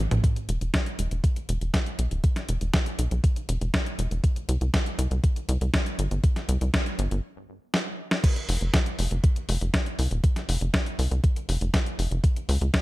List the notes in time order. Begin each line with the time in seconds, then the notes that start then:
0.11 A1, closed hi-hat, mid tom
0.24 kick, closed hi-hat
0.36 closed hi-hat
0.49 E1, closed hi-hat
0.61 E1, closed hi-hat
0.74 kick, snare, closed hi-hat
0.86 closed hi-hat
0.99 E1, closed hi-hat
1.11 E1, closed hi-hat
1.24 kick, closed hi-hat
1.36 closed hi-hat
1.49 E1, closed hi-hat
1.61 E1, closed hi-hat
1.74 kick, snare, closed hi-hat
1.86 closed hi-hat
1.99 B1, closed hi-hat
2.11 D1, closed hi-hat
2.24 kick, closed hi-hat
2.36 snare, closed hi-hat
2.49 E1, closed hi-hat
2.61 E1, closed hi-hat
2.74 kick, snare, closed hi-hat
2.86 closed hi-hat
2.99 B1, closed hi-hat
3.11 B1, closed hi-hat
3.24 kick, closed hi-hat
3.36 closed hi-hat
3.49 E1, closed hi-hat
3.61 E1, closed hi-hat
3.74 kick, snare, closed hi-hat
3.86 closed hi-hat
3.99 E1, closed hi-hat
4.11 E1, closed hi-hat
4.24 kick, closed hi-hat
4.36 closed hi-hat
4.49 C2, closed hi-hat
4.61 C2, closed hi-hat
4.74 kick, snare, closed hi-hat
4.86 closed hi-hat
4.99 C2, closed hi-hat
5.11 C2, closed hi-hat
5.24 kick, closed hi-hat
5.36 closed hi-hat
5.49 C2, closed hi-hat
5.61 C2, closed hi-hat
5.74 kick, snare, closed hi-hat
5.86 closed hi-hat
5.99 G1, closed hi-hat
6.11 G1, closed hi-hat
6.24 kick, closed hi-hat
6.36 snare, closed hi-hat
6.49 C2, closed hi-hat
6.61 C2, closed hi-hat
6.74 kick, snare, closed hi-hat
6.86 closed hi-hat
6.99 G1, closed hi-hat
7.11 G1, closed hi-hat
7.74 snare
8.11 snare
8.24 kick, closed hi-hat, crash
8.36 closed hi-hat
8.49 F1, open hi-hat
8.61 F1, closed hi-hat
8.74 kick, snare, closed hi-hat
8.86 closed hi-hat
8.99 F1, open hi-hat
9.11 F1, closed hi-hat
9.24 kick, closed hi-hat
9.36 closed hi-hat
9.49 F1, open hi-hat
9.61 F1, closed hi-hat
9.74 kick, snare, closed hi-hat
9.86 closed hi-hat
9.99 C2, open hi-hat
10.11 D#1, closed hi-hat
10.24 kick, closed hi-hat
10.36 snare, closed hi-hat
10.49 F1, open hi-hat
10.61 F1, closed hi-hat
10.74 kick, snare, closed hi-hat
10.86 closed hi-hat
10.99 C2, open hi-hat
11.11 C2, closed hi-hat
11.24 kick, closed hi-hat
11.36 closed hi-hat
11.49 F1, open hi-hat
11.61 F1, closed hi-hat
11.74 kick, snare, closed hi-hat
11.86 closed hi-hat
11.99 F1, open hi-hat
12.11 F1, closed hi-hat
12.24 kick, closed hi-hat
12.36 closed hi-hat
12.49 C#2, open hi-hat
12.61 C#2, closed hi-hat
12.74 kick, snare, closed hi-hat